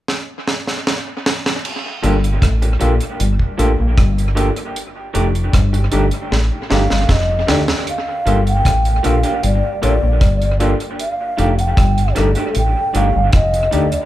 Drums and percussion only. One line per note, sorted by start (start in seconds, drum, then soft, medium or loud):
0.08 snare medium
0.48 snare medium
0.67 snare medium
0.87 snare medium
1.26 snare loud
1.46 snare medium
1.65 crash medium
2.04 closed hi-hat medium
2.24 closed hi-hat soft
2.42 kick loud
2.42 cross-stick loud
2.42 closed hi-hat medium
2.62 closed hi-hat soft
2.81 closed hi-hat medium
3.01 closed hi-hat soft
3.20 closed hi-hat medium
3.39 kick medium
3.59 closed hi-hat medium
3.98 kick loud
3.98 cross-stick loud
3.98 closed hi-hat medium
4.18 closed hi-hat soft
4.37 closed hi-hat medium
4.56 closed hi-hat soft
4.76 closed hi-hat medium
5.15 closed hi-hat medium
5.35 closed hi-hat soft
5.53 kick loud
5.53 cross-stick loud
5.53 closed hi-hat medium
5.74 closed hi-hat soft
5.92 closed hi-hat medium
6.11 closed hi-hat soft
6.32 snare medium
6.71 snare medium
6.90 snare medium
7.09 kick loud
7.09 snare medium
7.48 snare medium
7.68 snare medium
7.87 closed hi-hat medium
8.27 closed hi-hat medium
8.47 closed hi-hat soft
8.65 kick loud
8.65 cross-stick loud
8.65 closed hi-hat loud
8.85 closed hi-hat soft
9.04 closed hi-hat medium
9.23 closed hi-hat soft
9.43 closed hi-hat medium
9.83 closed hi-hat medium
10.21 kick loud
10.21 cross-stick loud
10.21 closed hi-hat medium
10.42 closed hi-hat soft
10.60 closed hi-hat medium
10.80 closed hi-hat soft
10.99 closed hi-hat medium
11.38 closed hi-hat medium
11.59 closed hi-hat soft
11.77 kick loud
11.77 cross-stick loud
11.77 closed hi-hat medium
11.98 closed hi-hat soft
12.16 cross-stick medium
12.16 closed hi-hat medium
12.35 closed hi-hat soft
12.55 closed hi-hat medium
12.95 closed hi-hat medium
13.33 kick loud
13.33 cross-stick loud
13.33 closed hi-hat medium
13.54 closed hi-hat soft
13.73 closed hi-hat medium
13.92 closed hi-hat soft